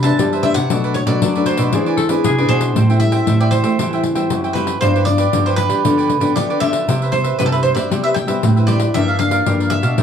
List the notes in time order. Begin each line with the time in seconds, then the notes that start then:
Already playing: C3
0.03 E3 B3 D4 B4 C5 E5 A5, pandeiro
0.19 G2 G3, pandeiro
0.32 B4 C5 E5, pandeiro
0.43 E3 B3 D4 E4 B4 C5 E5, pandeiro
0.54 C3 F#5, pandeiro
0.70 B2 F#3 A3 D4 A4 B4 D5, pandeiro
0.84 A4 B4 D5, pandeiro
0.94 C#5, muted cavaquinho stroke, pandeiro
1.07 B2 F#3 A3 D4 A4 B4 D5, pandeiro
1.22 F#2 F#3 D4 A4 B4 D5, pandeiro
1.35 F#3 A3 D4 A4 B4 D5, pandeiro
1.46 C5, pandeiro
1.57 B2 A4 B4 D5, pandeiro
1.73 E3 C4 D4 E4 G#4 B4 D5, pandeiro
1.86 G#4 B4 D5, pandeiro
1.97 A4, muted cavaquinho stroke, pandeiro
2.09 C4 D4 G#4 B4 D5, pandeiro
2.24 C3 G#4, pandeiro
2.38 C4 D4 G#4 B4 D5, pandeiro
2.49 B2 E4 G#4 B4 C5 D5, pandeiro
2.61 pandeiro
2.75 A2 G3 C4 E4 A4 C5 E5 G5, pandeiro
2.90 G3 C4 E4 C5 E5 G5, pandeiro
3.00 G3 C4 E4 E5, muted cavaquinho stroke, pandeiro
3.12 C5 E5 G5, pandeiro
3.27 A2 E3 G3 C4 E4 A4 C5 E5 G5, pandeiro
3.41 C5 D5 E5 G5, pandeiro
3.51 C5, pandeiro
3.63 A3 C5 E5 G5, pandeiro
3.79 A2 E3 G3 C4 E4 A4 C5 E5 G5, pandeiro
3.93 C5 E5 G5, pandeiro
4.04 muted cavaquinho stroke, pandeiro
4.15 E3 G3 C4 E4 C5 E5 G5, pandeiro
4.30 F#2 E3, pandeiro
4.44 C5 E5 G5, pandeiro
4.53 G3 C4 E4 A4 B4 C5 E5 G5, pandeiro
4.67 pandeiro
4.81 G2 F3 B3 D4 F4 G4 B4 C5 D5, pandeiro
4.96 G4 B4 D5, pandeiro
5.05 F3 B3 D4 D5, muted cavaquinho stroke, pandeiro
5.18 G4 B4 D5, pandeiro
5.33 G2 D3 F3 B3 D4 F4 G4 B4 D5, pandeiro
5.46 G4 B4 C5 D5, pandeiro
5.56 B4, pandeiro
5.69 G3 G4 B4 D5, pandeiro
5.84 G2 D3 F3 B3 D4 F4 G4 B4 D5, pandeiro
5.98 G4 B4 D5, pandeiro
6.09 muted cavaquinho stroke, pandeiro
6.20 D3 F3 B3 D4 G4 B4 D5, pandeiro
6.36 D3 D5, pandeiro
6.50 G4 B4 D5, pandeiro
6.60 F3 B3 D4 F4 G4 B4 D5 E5, pandeiro
6.73 pandeiro
6.88 C3 G3 B3 E4 G4 B4 C5 E5, pandeiro
7.02 B4 C5 E5, pandeiro
7.12 G3 B3 E4 C5, muted cavaquinho stroke, pandeiro
7.24 B4 C5 E5, pandeiro
7.39 G2 C3 G3 B3 E4 G4 B4 C5 E5, pandeiro
7.46 A4
7.52 B4 C5 E5, pandeiro
7.63 C5, pandeiro
7.75 C4 B4 C5 D5 E5, pandeiro
7.91 C3 G3 B3 E4 G4 B4 C5 E5, pandeiro
8.04 B4 C5 E5, pandeiro
8.14 G5, pandeiro
8.27 G3 B3 E4 B4 C5 E5, pandeiro
8.43 G2 A2, pandeiro
8.56 B4 C5 E5, pandeiro
8.67 G3 B3 E4 G4 B4 C5 D5 E5, pandeiro
8.80 pandeiro
8.94 G2 F3 A#3 D4 G4 A#4 D5 E5 F5, pandeiro
9.08 A#4 D5 F5, pandeiro
9.19 F3 A#3 D4 F5, muted cavaquinho stroke, pandeiro
9.31 A#4 D5 F5, pandeiro
9.46 G2 D3 F3 A#3 D4 G4 A#4 D5 F5, pandeiro
9.60 A#4 D5 F5, pandeiro
9.70 E5, pandeiro
9.83 B2 A#4 D5 F5, pandeiro
9.97 C3 E3 A#3 D4 E4 A#4 C5 E5, pandeiro